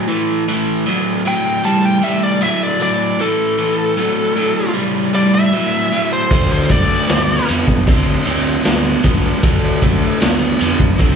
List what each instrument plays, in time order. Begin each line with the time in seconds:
0.08 overdriven electric guitar A2 E3
0.49 overdriven electric guitar A2 E3
0.86 overdriven electric guitar A2 F#3
1.25 overdriven electric guitar A2 F#3, lead electric guitar G5
1.64 overdriven electric guitar A2 G3, lead electric guitar A5
1.85 lead electric guitar G5
2.02 overdriven electric guitar A2 G3, lead electric guitar E5
2.23 lead electric guitar D5
2.41 overdriven electric guitar A2 F#3, lead electric guitar E5
2.63 lead electric guitar D5
2.80 overdriven electric guitar A2 F#3, lead electric guitar D5
3.19 overdriven electric guitar A2 E3, lead electric guitar A4
3.58 overdriven electric guitar A2 E3
3.97 overdriven electric guitar A2 F#3
4.36 overdriven electric guitar A2 F#3
4.74 overdriven electric guitar A2 G3
5.13 overdriven electric guitar A2 G3, lead electric guitar D5
5.35 lead electric guitar E5
5.52 overdriven electric guitar A2 F#3
5.92 overdriven electric guitar A2 F#3
6.13 lead electric guitar C5
6.31 fingered electric bass D2, overdriven electric guitar D3 A3, kick, ride
6.52 lead electric guitar C5
6.69 overdriven electric guitar D3 A3, lead electric guitar D5, kick, ride
7.08 fingered electric bass D2, overdriven electric guitar D3 B3, snare, ride
7.47 fingered electric bass F2, overdriven electric guitar D3 B3, ride
7.68 kick
7.87 fingered electric bass D2, overdriven electric guitar D3 C4, kick, ride
8.25 fingered electric bass D2, overdriven electric guitar D3 C4, ride
8.65 fingered electric bass D2, overdriven electric guitar D3 B3, snare, ride
9.04 fingered electric bass D2, overdriven electric guitar D3 B3, kick, ride
9.43 fingered electric bass D2, overdriven electric guitar D3 A3, kick, ride
9.82 overdriven electric guitar D3 A3, kick, ride
10.21 fingered electric bass D2, overdriven electric guitar D3 B3, snare, ride
10.60 fingered electric bass F2, overdriven electric guitar D3 B3, ride
10.80 kick
10.99 fingered electric bass D2, overdriven electric guitar D3 C4, kick, ride